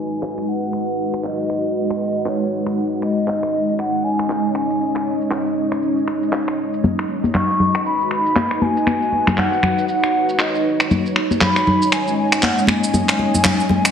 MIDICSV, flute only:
0, 0, Header, 1, 2, 480
1, 0, Start_track
1, 0, Key_signature, 5, "minor"
1, 0, Tempo, 508475
1, 696, Time_signature, 4, 2, 24, 8
1, 13133, End_track
2, 0, Start_track
2, 0, Title_t, "Flute"
2, 0, Program_c, 0, 73
2, 0, Note_on_c, 0, 80, 99
2, 459, Note_on_c, 0, 78, 91
2, 473, Note_off_c, 0, 80, 0
2, 1173, Note_off_c, 0, 78, 0
2, 1178, Note_on_c, 0, 75, 90
2, 1623, Note_off_c, 0, 75, 0
2, 1660, Note_on_c, 0, 75, 86
2, 2105, Note_off_c, 0, 75, 0
2, 2143, Note_on_c, 0, 73, 73
2, 2495, Note_off_c, 0, 73, 0
2, 2855, Note_on_c, 0, 75, 88
2, 3537, Note_off_c, 0, 75, 0
2, 3578, Note_on_c, 0, 78, 96
2, 3816, Note_on_c, 0, 80, 108
2, 3830, Note_off_c, 0, 78, 0
2, 4293, Note_off_c, 0, 80, 0
2, 4299, Note_on_c, 0, 80, 89
2, 4744, Note_off_c, 0, 80, 0
2, 6940, Note_on_c, 0, 85, 105
2, 7384, Note_off_c, 0, 85, 0
2, 7420, Note_on_c, 0, 83, 98
2, 7641, Note_off_c, 0, 83, 0
2, 7660, Note_on_c, 0, 83, 100
2, 8139, Note_on_c, 0, 80, 95
2, 8153, Note_off_c, 0, 83, 0
2, 8849, Note_off_c, 0, 80, 0
2, 8855, Note_on_c, 0, 78, 89
2, 9301, Note_off_c, 0, 78, 0
2, 9333, Note_on_c, 0, 78, 91
2, 9813, Note_on_c, 0, 75, 77
2, 9827, Note_off_c, 0, 78, 0
2, 10197, Note_off_c, 0, 75, 0
2, 10782, Note_on_c, 0, 83, 110
2, 11261, Note_on_c, 0, 80, 97
2, 11275, Note_off_c, 0, 83, 0
2, 11493, Note_off_c, 0, 80, 0
2, 11498, Note_on_c, 0, 80, 90
2, 11735, Note_on_c, 0, 78, 89
2, 11749, Note_off_c, 0, 80, 0
2, 11969, Note_off_c, 0, 78, 0
2, 11975, Note_on_c, 0, 80, 90
2, 13133, Note_off_c, 0, 80, 0
2, 13133, End_track
0, 0, End_of_file